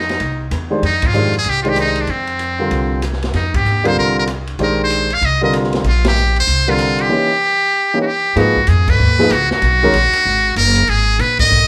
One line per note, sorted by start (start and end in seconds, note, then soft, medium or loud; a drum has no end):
0.00 0.17 F2 medium
0.00 0.52 D#4 medium
0.00 snare soft
0.09 snare soft
0.09 ride soft
0.20 0.49 C2 medium
0.20 ride medium
0.51 0.80 E2 medium
0.51 cross-stick soft
0.51 hi-hat pedal soft
0.51 ride medium
0.70 0.81 D#3 medium
0.70 0.81 G#3 medium
0.70 0.81 D4 medium
0.70 0.82 G4 medium
0.70 0.82 C5 medium
0.83 1.42 F2 medium
0.83 1.08 D#4 medium
0.83 ride medium
1.02 kick medium
1.02 ride medium
1.06 1.36 F4 loud
1.13 1.32 D#3 medium
1.13 1.32 G#3 soft
1.13 1.32 D4 soft
1.13 1.32 G4 soft
1.13 1.32 C5 medium
1.13 hi-hat pedal soft
1.34 ride soft
1.38 1.51 G#4 medium
1.44 2.05 C2 medium
1.44 ride soft
1.49 1.62 G4 medium
1.62 2.06 D#3 medium
1.62 2.05 G#3 medium
1.62 2.06 D4 medium
1.62 1.71 F4 medium
1.62 2.06 G4 medium
1.62 2.06 C5 medium
1.62 ride soft
1.69 1.79 G4 medium
1.76 cross-stick medium
1.76 hi-hat pedal medium
1.76 ride soft
1.80 2.02 D#4 medium
1.96 ride soft
2.01 2.12 D4 medium
2.07 2.68 F2 medium
2.07 3.04 C4 medium
2.07 ride soft
2.27 ride soft
2.39 hi-hat pedal soft
2.39 ride soft
2.59 3.00 D3 medium
2.59 3.00 G3 soft
2.59 3.01 C4 medium
2.59 3.00 F4 soft
2.59 3.01 A#4 medium
2.71 3.31 C2 medium
2.71 ride medium
3.02 cross-stick medium
3.02 hi-hat pedal medium
3.02 ride medium
3.13 snare soft
3.22 snare soft
3.22 ride soft
3.33 3.63 F2 medium
3.33 3.57 D#4 medium
3.33 snare soft
3.33 ride soft
3.54 3.89 G4 medium
3.54 kick medium
3.54 ride medium
3.65 3.94 D#2 medium
3.65 hi-hat pedal soft
3.84 4.25 D3 medium
3.84 4.25 G3 medium
3.84 4.25 C4 medium
3.84 4.26 F4 medium
3.84 4.26 A#4 medium
3.84 3.98 C5 medium
3.84 ride medium
3.96 4.56 C2 medium
3.96 4.16 A#4 medium
4.19 4.24 A#4 medium
4.27 cross-stick medium
4.27 hi-hat pedal soft
4.27 ride medium
4.47 ride soft
4.59 5.19 A#1 medium
4.59 5.07 D#3 medium
4.59 5.07 G#3 medium
4.59 5.07 D4 medium
4.59 5.07 G4 medium
4.59 5.07 C5 medium
4.59 ride soft
4.63 4.80 A#4 medium
4.84 5.15 C5 medium
4.90 hi-hat pedal soft
4.90 ride medium
5.10 5.27 F5 medium
5.10 ride soft
5.21 5.82 C2 medium
5.21 5.43 D#5 medium
5.21 ride medium
5.41 5.82 D3 medium
5.41 5.83 G3 medium
5.41 5.83 C4 medium
5.41 5.83 F4 medium
5.41 5.83 A#4 medium
5.41 5.54 D#5 medium
5.53 cross-stick medium
5.53 hi-hat pedal medium
5.53 ride medium
5.64 snare soft
5.73 snare soft
5.73 ride soft
5.84 6.44 A#1 medium
5.84 ride medium
5.88 6.05 F4 medium
6.04 6.36 G4 medium
6.04 snare medium
6.04 ride medium
6.16 hi-hat pedal medium
6.36 6.71 C5 loud
6.36 ride soft
6.47 7.07 C2 medium
6.47 ride soft
6.67 7.09 D3 medium
6.67 7.08 G3 medium
6.67 7.09 C4 medium
6.67 7.09 F4 medium
6.67 7.03 F4 medium
6.67 7.09 A#4 medium
6.78 cross-stick medium
6.78 hi-hat pedal medium
6.78 ride medium
6.99 8.01 G4 medium
6.99 ride soft
7.09 7.28 E3 medium
7.09 7.28 A#3 medium
7.09 7.28 C#4 soft
7.09 7.29 D#4 soft
7.09 7.29 G4 medium
7.94 8.04 E3 medium
7.94 8.04 A#3 medium
7.94 8.04 C#4 medium
7.94 8.05 D#4 soft
7.94 8.05 G4 medium
8.01 8.08 F#4 medium
8.07 8.40 G4 medium
8.36 8.67 G#2 medium
8.36 8.54 F3 medium
8.36 8.55 A#3 medium
8.36 8.55 D#4 medium
8.36 8.70 F#4 medium
8.36 8.55 G#4 medium
8.36 8.55 B4 medium
8.36 ride medium
8.57 kick soft
8.67 8.98 F2 medium
8.67 8.91 G#4 medium
8.67 hi-hat pedal soft
8.67 ride medium
8.88 9.33 B4 medium
8.88 kick medium
8.88 crash medium
9.00 9.30 D#2 medium
9.19 9.30 F3 medium
9.19 9.30 A#3 medium
9.19 9.30 D#4 medium
9.19 9.30 G#4 medium
9.19 9.30 B4 medium
9.19 snare soft
9.30 9.49 C#2 medium
9.30 9.52 F#4 medium
9.30 hi-hat pedal medium
9.30 ride medium
9.51 10.53 F#4 medium
9.51 muted upright bass stroke soft
9.51 snare soft
9.62 9.93 B1 medium
9.62 ride medium
9.83 9.93 D#3 medium
9.83 9.93 G#3 medium
9.83 9.94 C#4 medium
9.83 9.94 F#4 medium
9.83 9.93 A#4 medium
9.94 10.13 A#1 medium
9.94 hi-hat pedal medium
9.94 ride medium
10.13 muted upright bass stroke soft
10.13 ride medium
10.25 10.55 G#1 medium
10.56 10.87 F#1 medium
10.56 10.91 A#4 loud
10.56 hi-hat pedal medium
10.56 ride medium
10.76 ride soft
10.87 11.18 G#1 medium
10.87 11.22 G#4 loud
10.87 ride medium
11.19 11.50 A#1 medium
11.19 11.39 B4 medium
11.19 hi-hat pedal soft
11.19 ride medium
11.39 11.68 D#5 loud
11.39 kick medium
11.39 crash medium
11.51 11.68 B1 medium